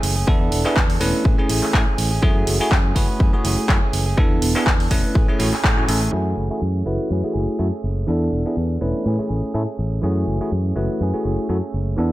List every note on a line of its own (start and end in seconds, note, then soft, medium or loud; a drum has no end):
0.00 0.23 F#1 medium
0.00 0.16 E3 medium
0.00 0.17 A3 loud
0.00 0.16 C#4 medium
0.00 0.15 G#4 loud
0.00 open hi-hat loud
0.16 0.27 A3 soft
0.16 0.28 C#4 medium
0.16 0.27 G#4 medium
0.27 0.47 E2 loud
0.27 0.65 E3 medium
0.27 0.62 B3 loud
0.27 0.65 B3 medium
0.27 0.62 D4 medium
0.27 0.65 D4 loud
0.27 0.62 E4 medium
0.27 0.62 A4 loud
0.27 0.63 A4 loud
0.27 kick loud
0.52 0.62 E1 medium
0.52 open hi-hat loud
0.64 0.75 B3 medium
0.64 0.75 B3 soft
0.64 0.75 D4 medium
0.64 0.76 D4 medium
0.64 0.75 E4 medium
0.64 0.75 G#4 loud
0.64 0.76 A4 medium
0.64 clap soft
0.76 0.96 E2 loud
0.76 0.98 E3 medium
0.76 1.00 B3 medium
0.76 1.01 D4 medium
0.76 1.01 A4 loud
0.76 kick loud
0.76 clap loud
0.90 open hi-hat medium
1.00 1.11 E1 medium
1.00 1.23 E3 medium
1.00 1.35 A3 medium
1.00 1.25 B3 medium
1.00 1.35 C#4 medium
1.00 1.26 D4 medium
1.00 1.35 E4 medium
1.00 1.26 A4 medium
1.00 1.35 B4 loud
1.00 open hi-hat loud
1.24 1.36 A2 loud
1.24 1.38 E3 medium
1.24 1.39 A3 medium
1.24 1.38 C#4 medium
1.24 1.36 G#4 medium
1.24 kick loud
1.38 1.71 A3 medium
1.38 1.48 A3 medium
1.38 1.71 C#4 medium
1.38 1.50 C#4 medium
1.38 1.71 E4 medium
1.38 1.49 G#4 medium
1.38 1.72 G#4 medium
1.48 1.60 A1 medium
1.48 1.72 E3 medium
1.48 1.73 A3 medium
1.48 1.74 C#4 medium
1.48 1.74 G#4 medium
1.48 open hi-hat loud
1.63 clap soft
1.73 1.84 A2 medium
1.73 2.11 E3 medium
1.73 1.81 A3 loud
1.73 2.12 A3 medium
1.73 1.81 C#4 medium
1.73 1.81 E4 medium
1.73 2.10 G#4 loud
1.73 1.81 A4 loud
1.73 kick loud
1.73 clap loud
1.98 2.18 A1 loud
1.98 open hi-hat loud
2.11 2.22 A3 medium
2.11 2.22 C#4 medium
2.11 2.22 G#4 medium
2.22 2.42 F#2 loud
2.22 2.60 E3 medium
2.22 2.57 A3 loud
2.22 2.61 A3 medium
2.22 2.60 C#4 loud
2.22 2.57 E4 medium
2.22 2.57 F#4 medium
2.22 2.57 G#4 loud
2.22 2.58 G#4 loud
2.22 kick loud
2.47 2.58 F#1 medium
2.47 open hi-hat loud
2.60 2.70 A3 medium
2.60 2.71 C#4 medium
2.60 2.70 E4 medium
2.60 2.70 F#4 medium
2.60 2.71 G#4 medium
2.60 2.70 G#4 loud
2.60 muted fingered electric bass stroke soft
2.71 2.91 F#2 loud
2.71 2.94 E3 loud
2.71 2.95 A3 medium
2.71 2.96 C#4 loud
2.71 2.97 G#4 loud
2.71 kick loud
2.71 clap loud
2.95 3.06 F#1 medium
2.95 3.09 E3 medium
2.95 3.30 A3 medium
2.95 3.09 A3 medium
2.95 3.09 C#4 medium
2.95 3.30 E4 medium
2.95 3.30 F#4 medium
2.95 3.07 G#4 medium
2.95 3.31 B4 loud
2.95 kick medium
2.95 open hi-hat loud
3.08 3.19 A3 soft
3.08 3.20 C#4 medium
3.08 3.20 G#4 medium
3.19 3.31 F#2 loud
3.19 3.33 E3 medium
3.19 3.34 A3 medium
3.19 3.33 C#4 medium
3.19 3.32 G#4 medium
3.19 kick loud
3.33 3.66 A3 medium
3.33 3.44 A3 medium
3.33 3.45 C#4 medium
3.33 3.66 E4 medium
3.33 3.66 F#4 medium
3.33 3.44 G#4 medium
3.33 3.66 G#4 medium
3.33 muted fingered electric bass stroke soft
3.44 3.55 F#1 medium
3.44 3.58 E3 medium
3.44 3.58 A3 medium
3.44 3.58 C#4 medium
3.44 3.56 G#4 medium
3.44 open hi-hat loud
3.57 3.68 A3 soft
3.57 3.69 C#4 medium
3.57 3.69 G#4 medium
3.57 muted fingered electric bass stroke soft
3.68 3.80 F#2 medium
3.68 4.07 E3 medium
3.68 3.76 A3 medium
3.68 4.07 A3 loud
3.68 4.07 C#4 loud
3.68 3.76 E4 medium
3.68 3.76 F#4 medium
3.68 4.05 G#4 loud
3.68 3.76 A4 loud
3.68 kick loud
3.68 clap loud
3.93 4.13 F#1 loud
3.93 open hi-hat loud
4.06 4.18 A3 medium
4.06 4.18 C#4 medium
4.06 4.17 G#4 medium
4.17 4.37 E2 loud
4.17 4.55 E3 medium
4.17 4.52 B3 medium
4.17 4.56 B3 loud
4.17 4.52 D4 medium
4.17 4.55 D4 medium
4.17 4.52 E4 medium
4.17 4.53 A4 loud
4.17 4.54 A4 loud
4.17 kick loud
4.42 4.53 E1 medium
4.42 open hi-hat loud
4.55 4.65 B3 medium
4.55 4.66 B3 soft
4.55 4.65 D4 medium
4.55 4.66 D4 medium
4.55 4.65 E4 medium
4.55 4.65 G#4 loud
4.55 4.66 A4 medium
4.55 clap soft
4.66 4.86 E2 loud
4.66 4.89 E3 medium
4.66 4.90 B3 medium
4.66 4.92 A4 loud
4.66 kick loud
4.66 clap loud
4.80 open hi-hat medium
4.90 5.01 E1 medium
4.90 5.04 E3 medium
4.90 5.25 A3 medium
4.90 5.05 B3 medium
4.90 5.25 C#4 medium
4.90 5.04 D4 medium
4.90 5.26 E4 medium
4.90 5.02 A4 medium
4.90 5.26 B4 loud
4.90 kick medium
4.90 open hi-hat loud
5.04 5.15 B3 soft
5.04 5.16 D4 medium
5.04 5.15 A4 medium
5.14 5.26 A2 loud
5.14 5.28 E3 medium
5.14 5.29 A3 medium
5.14 5.29 C#4 medium
5.14 5.27 G#4 medium
5.14 kick loud
5.28 5.37 A3 medium
5.28 5.39 A3 soft
5.28 5.37 C#4 medium
5.28 5.40 C#4 medium
5.28 5.38 E4 medium
5.28 5.39 G#4 medium
5.28 5.38 G#4 medium
5.28 muted fingered electric bass stroke soft
5.39 5.50 A1 medium
5.39 5.53 E3 medium
5.39 5.51 A3 medium
5.39 5.53 A3 medium
5.39 5.51 C#4 medium
5.39 5.53 C#4 medium
5.39 5.51 E4 medium
5.39 5.52 F#4 medium
5.39 5.51 G#4 medium
5.39 open hi-hat loud
5.52 5.63 A3 soft
5.52 5.64 C#4 medium
5.52 5.64 G#4 medium
5.52 clap soft
5.63 5.84 A2 medium
5.63 6.02 E3 medium
5.63 6.02 A3 medium
5.63 6.00 G#4 loud
5.63 kick loud
5.63 clap loud
5.77 5.86 A3 medium
5.77 5.86 C#4 medium
5.77 5.86 E4 medium
5.77 5.86 F#4 medium
5.88 6.08 A1 loud
5.88 6.10 A3 medium
5.88 6.10 C#4 medium
5.88 6.10 E4 medium
5.88 6.10 A4 medium
5.88 open hi-hat loud
6.01 6.12 A3 medium
6.01 6.13 C#4 medium
6.01 6.12 G#4 medium
6.11 6.33 F#2 medium
6.11 7.09 E3 medium
6.11 6.47 A3 medium
6.11 7.10 A3 medium
6.11 7.11 C#4 medium
6.11 6.47 E4 medium
6.11 6.48 F#4 medium
6.11 6.48 G#4 loud
6.16 7.12 G#4 loud
6.37 6.48 F#1 medium
6.50 6.60 A3 medium
6.50 6.60 E4 medium
6.50 6.60 F#4 medium
6.50 6.61 G#4 medium
6.50 muted fingered electric bass stroke soft
6.62 6.81 F#2 medium
6.86 6.97 F#1 medium
6.86 7.20 A3 medium
6.86 7.21 E4 medium
6.86 7.21 F#4 medium
6.86 7.21 B4 medium
7.10 7.21 F#2 medium
7.10 7.34 E3 medium
7.10 7.35 A3 medium
7.10 7.35 C#4 medium
7.10 7.33 G#4 medium
7.24 7.56 A3 medium
7.24 7.57 E4 medium
7.24 7.57 F#4 medium
7.24 7.57 G#4 medium
7.24 muted fingered electric bass stroke soft
7.34 7.46 F#1 medium
7.34 8.08 A3 medium
7.34 8.09 C#4 medium
7.34 8.08 G#4 medium
7.59 7.70 F#2 medium
7.59 7.66 A3 medium
7.59 7.67 E4 medium
7.59 7.67 F#4 medium
7.59 7.67 A4 loud
7.84 8.03 F#1 medium
8.07 8.28 E2 medium
8.07 9.04 E3 medium
8.07 8.42 B3 medium
8.07 9.06 B3 medium
8.07 8.43 D4 medium
8.07 9.07 D4 loud
8.07 8.43 E4 medium
8.07 8.43 A4 loud
8.12 9.08 A4 medium
8.33 8.43 E1 medium
8.46 8.55 B3 medium
8.46 8.55 D4 medium
8.46 8.56 E4 medium
8.46 8.56 G#4 medium
8.57 8.77 E2 medium
8.81 8.92 E1 medium
8.81 9.16 A3 medium
8.81 9.16 C#4 medium
8.81 9.16 E4 medium
8.81 9.16 B4 loud
9.05 9.16 A2 medium
9.05 9.30 E3 medium
9.05 9.30 A3 medium
9.05 9.30 C#4 medium
9.05 9.28 G#4 medium
9.19 9.52 A3 medium
9.19 9.52 C#4 medium
9.19 9.52 E4 medium
9.19 9.52 G#4 medium
9.19 muted fingered electric bass stroke soft
9.29 9.41 A1 medium
9.29 10.03 A3 medium
9.29 10.04 C#4 medium
9.29 10.03 G#4 medium
9.44 muted fingered electric bass stroke soft
9.54 9.65 A2 medium
9.54 9.62 A3 medium
9.54 9.62 C#4 medium
9.54 9.62 E4 medium
9.54 9.62 A4 loud
9.79 9.99 A1 medium
10.02 10.23 F#2 medium
10.02 10.99 E3 medium
10.02 10.38 A3 medium
10.02 11.01 A3 medium
10.02 11.01 C#4 loud
10.02 10.38 E4 medium
10.02 10.38 F#4 medium
10.02 10.38 G#4 loud
10.07 11.02 G#4 medium
10.27 10.38 F#1 medium
10.41 10.50 A3 medium
10.41 10.51 E4 medium
10.41 10.51 F#4 medium
10.41 10.51 G#4 medium
10.41 muted fingered electric bass stroke soft
10.52 10.72 F#2 medium
10.76 10.87 F#1 medium
10.76 11.11 A3 medium
10.76 11.11 E4 medium
10.76 11.11 F#4 medium
10.76 11.11 B4 medium
11.00 11.11 F#2 medium
11.00 11.25 E3 medium
11.00 11.25 A3 medium
11.00 11.25 C#4 medium
11.00 11.23 G#4 medium
11.13 11.47 A3 medium
11.13 11.47 E4 medium
11.13 11.47 F#4 medium
11.13 11.47 G#4 medium
11.13 muted fingered electric bass stroke soft
11.24 11.36 F#1 medium
11.24 11.98 A3 soft
11.24 11.99 C#4 medium
11.24 11.98 G#4 medium
11.49 11.60 F#2 medium
11.49 11.57 A3 medium
11.49 11.57 E4 medium
11.49 11.57 F#4 medium
11.49 11.57 A4 loud
11.74 11.94 F#1 medium
11.97 12.12 E2 medium
11.97 12.12 E3 medium
11.97 12.12 B3 medium
11.97 12.12 D4 medium
11.97 12.12 E4 medium
11.97 12.12 A4 loud
12.02 12.12 A4 medium